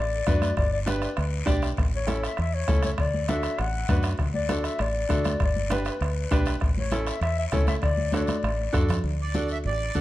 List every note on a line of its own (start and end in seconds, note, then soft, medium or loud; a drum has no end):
0.00 0.21 A1 medium
0.00 0.53 D5 medium
0.27 0.51 F#2 medium
0.27 0.48 D4 medium
0.27 0.48 F#4 medium
0.27 0.48 B4 medium
0.27 bombo low medium
0.27 bombo rim medium
0.27 high conga medium
0.27 short guiro medium
0.42 bombo rim medium
0.42 high conga medium
0.42 short guiro medium
0.57 1.05 G1 medium
0.57 0.71 D5 medium
0.57 bombo low medium
0.57 bombo rim medium
0.57 long guiro medium
0.73 0.80 D5 medium
0.86 1.08 D4 medium
0.86 1.08 G4 medium
0.86 1.08 B4 medium
0.86 1.59 B4 medium
0.86 bombo rim medium
0.86 high conga medium
0.86 short guiro medium
1.02 bombo rim medium
1.02 short guiro medium
1.17 1.42 D2 medium
1.17 bombo rim medium
1.17 high conga soft
1.17 long guiro medium
1.46 1.72 B1 medium
1.46 1.68 D4 medium
1.46 1.68 G4 medium
1.46 1.68 D5 medium
1.46 bombo low medium
1.46 bombo rim medium
1.46 high conga medium
1.46 short guiro medium
1.62 bombo rim medium
1.62 short guiro medium
1.77 2.26 A1 medium
1.77 bombo low medium
1.77 bombo rim medium
1.77 high conga soft
1.77 long guiro medium
1.96 2.23 C#5 medium
2.07 2.29 C#4 medium
2.07 2.29 E4 medium
2.07 2.29 A4 medium
2.07 bombo rim medium
2.07 high conga medium
2.07 short guiro medium
2.23 2.38 E5 medium
2.23 bombo rim medium
2.23 short guiro medium
2.37 2.63 E2 medium
2.37 2.56 E5 medium
2.37 bombo rim medium
2.37 high conga soft
2.37 long guiro medium
2.54 2.84 C#5 medium
2.68 2.93 C#2 medium
2.68 2.89 C#4 medium
2.68 2.90 E4 medium
2.68 2.90 A4 medium
2.68 bombo low medium
2.68 bombo rim medium
2.68 high conga medium
2.68 short guiro medium
2.83 2.92 C#5 medium
2.83 bombo rim medium
2.83 high conga medium
2.83 short guiro medium
2.98 3.47 D2 medium
2.98 3.30 D5 medium
2.98 bombo low medium
2.98 bombo rim medium
2.98 high conga soft
2.98 long guiro medium
3.14 high conga medium
3.28 3.50 D4 medium
3.28 3.50 F#4 medium
3.28 3.51 A4 medium
3.28 3.60 E5 medium
3.28 bombo rim medium
3.28 high conga medium
3.28 short guiro medium
3.43 bombo rim medium
3.43 short guiro medium
3.58 3.83 A1 medium
3.58 4.04 F#5 medium
3.58 bombo rim medium
3.58 high conga soft
3.58 long guiro medium
3.88 4.13 F#2 medium
3.88 4.10 D4 medium
3.88 4.11 F#4 medium
3.88 4.11 B4 medium
3.88 bombo low medium
3.88 bombo rim medium
3.88 high conga medium
3.88 short guiro medium
4.03 bombo rim medium
4.03 short guiro medium
4.18 4.68 D2 medium
4.18 bombo low medium
4.18 bombo rim medium
4.18 high conga soft
4.18 long guiro medium
4.34 4.67 D5 medium
4.34 high conga medium
4.49 4.71 D4 medium
4.49 4.71 F#4 medium
4.49 4.71 A4 medium
4.49 bombo rim medium
4.49 high conga medium
4.49 short guiro medium
4.64 4.83 E5 medium
4.64 bombo rim medium
4.64 short guiro medium
4.79 5.04 A1 medium
4.79 5.41 D5 medium
4.79 bombo rim medium
4.79 high conga soft
4.79 long guiro medium
5.09 5.35 D2 medium
5.09 5.31 D4 medium
5.09 5.32 F#4 medium
5.09 5.31 A4 medium
5.09 bombo low medium
5.09 bombo rim medium
5.09 high conga medium
5.09 short guiro medium
5.24 bombo rim medium
5.24 high conga medium
5.24 short guiro medium
5.40 5.89 G1 medium
5.40 bombo low medium
5.40 bombo rim medium
5.40 long guiro medium
5.44 5.75 D5 medium
5.56 high conga medium
5.70 5.92 D4 medium
5.70 5.92 G4 medium
5.70 5.92 B4 medium
5.70 6.48 B4 medium
5.70 bombo rim medium
5.70 high conga medium
5.70 short guiro medium
5.85 bombo rim medium
5.85 short guiro medium
6.01 6.25 D2 medium
6.01 bombo rim medium
6.01 high conga soft
6.01 long guiro medium
6.31 6.56 B1 medium
6.31 6.53 D4 medium
6.31 6.53 G4 medium
6.31 6.53 B4 medium
6.31 bombo low medium
6.31 bombo rim medium
6.31 high conga medium
6.31 short guiro medium
6.46 bombo rim medium
6.46 short guiro medium
6.60 7.10 A1 medium
6.60 bombo low medium
6.60 bombo rim medium
6.60 high conga soft
6.60 long guiro medium
6.77 7.10 C#5 medium
6.77 high conga medium
6.91 7.13 C#4 medium
6.91 7.13 E4 medium
6.91 7.14 A4 medium
6.91 bombo rim medium
6.91 high conga medium
6.91 short guiro medium
7.06 7.22 E5 medium
7.06 bombo rim medium
7.06 short guiro medium
7.21 7.46 E2 medium
7.21 7.37 E5 medium
7.21 bombo rim medium
7.21 high conga soft
7.21 long guiro medium
7.39 7.45 E5 medium
7.52 7.77 C#2 medium
7.52 7.74 C#4 medium
7.52 7.74 E4 medium
7.52 7.74 A4 medium
7.52 7.67 C#5 medium
7.52 bombo low medium
7.52 bombo rim medium
7.52 high conga medium
7.52 short guiro medium
7.67 7.75 E5 medium
7.67 bombo rim medium
7.67 high conga medium
7.67 short guiro medium
7.82 8.32 D2 medium
7.82 8.11 D5 medium
7.82 bombo low medium
7.82 bombo rim medium
7.82 high conga soft
7.82 long guiro medium
7.97 high conga medium
8.12 8.34 D4 medium
8.12 8.35 F#4 medium
8.12 8.35 A4 medium
8.12 8.85 D5 medium
8.12 bombo rim medium
8.12 high conga medium
8.12 short guiro medium
8.27 bombo rim medium
8.27 high conga medium
8.27 short guiro medium
8.43 8.68 A1 medium
8.43 bombo rim medium
8.43 long guiro medium
8.73 8.98 F#2 medium
8.73 8.95 D4 medium
8.73 8.95 F#4 medium
8.73 8.95 A4 medium
8.73 bombo low medium
8.73 bombo rim medium
8.73 short guiro medium
8.89 bombo rim medium
8.89 low conga medium
8.89 short guiro medium
9.04 9.67 D2 medium
9.04 high conga soft
9.04 long guiro medium
9.22 9.49 D5 medium
9.34 9.56 D4 medium
9.34 9.56 F#4 medium
9.34 9.56 A4 medium
9.34 high conga medium
9.34 short guiro medium
9.49 9.58 E5 medium
9.49 short guiro soft
9.64 9.89 A1 medium
9.64 10.01 D5 medium
9.64 high conga soft
9.64 long guiro medium
9.94 10.01 D2 medium
9.94 10.01 D4 medium
9.94 10.01 F#4 medium
9.94 10.01 A4 medium
9.94 high conga medium
9.94 short guiro medium